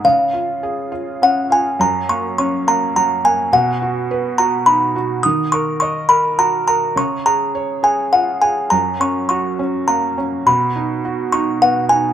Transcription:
<<
  \new Staff \with { instrumentName = "Music box" } { \time 3/4 \key fis \major \tempo 4 = 104 eis''2 fis''8 gis''8 | ais''8 cis'''8 cis'''8 ais''8 ais''8 gis''8 | fis''4. ais''8 b''4 | dis'''8 cis'''8 cis'''8 b''8 ais''8 ais''8 |
cis'''8 ais''4 gis''8 fis''8 gis''8 | ais''8 cis'''8 cis'''4 ais''4 | b''4 r8 cis'''8 fis''8 gis''8 | }
  \new Staff \with { instrumentName = "Felt piano" } { \time 3/4 \key fis \major cis8 eis'8 gis'8 eis'8 cis'8 eis'8 | fis,8 ais8 cis'8 ais8 fis8 ais8 | b,8 fis'8 b'8 fis'8 dis'8 fis'8 | dis8 ais'8 dis''8 ais'8 fis'8 ais'8 |
cis8 gis'8 cis''8 gis'8 eis'8 gis'8 | fis,8 cis'8 fis'8 cis'8 ais8 cis'8 | b,8 dis'8 fis'8 dis'8 b8 dis'8 | }
>>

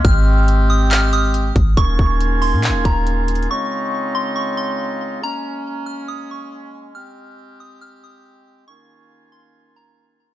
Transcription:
<<
  \new Staff \with { instrumentName = "Synth bell" } { \time 4/4 \key aes \major \tempo 4 = 139 f'''4. ees'''8 f'''8 ees'''8 r4 | des'''4. c'''4 bes''8 r4 | des'''4. c'''8 des'''8 c'''8 r4 | bes''4. f'''8 ees'''8 des'''8 r4 |
f'''4. ees'''8 f'''8 ees'''8 r4 | des'''4. c'''4 bes''8 r4 | }
  \new Staff \with { instrumentName = "Woodwind section" } { \time 4/4 \key aes \major << { <aes c' g'>1 | <ees bes f' aes'>1 | <des aes ees'>1 | <bes des'>1 |
<c' g'>1 | <ees bes f' aes'>1 | } \\ { r1 | des'1 | c'1 | aes1~ |
aes1 | des'1 | } >> }
  \new Staff \with { instrumentName = "808-style bass" } { \clef bass \time 4/4 \key aes \major aes,,2.~ aes,,8 aes,,8 | ees,,8 ees,,4~ ees,,16 bes,16. ees,,16. ees,,4. | r1 | r1 |
r1 | r1 | }
  \new DrumStaff \with { instrumentName = "Drums" } \drummode { \time 4/4 <hh bd>4 hh4 <hc hh>8 hh8 hh8 <hh bd>8 | <hh bd>8 bd8 hh8 hho8 <hc hh>8 <hh bd>8 \tuplet 3/2 { hh16 r16 r16 hh16 hh16 hh16 } | r4 r4 r4 r4 | r4 r4 r4 r4 |
r4 r4 r4 r4 | r4 r4 r4 r4 | }
>>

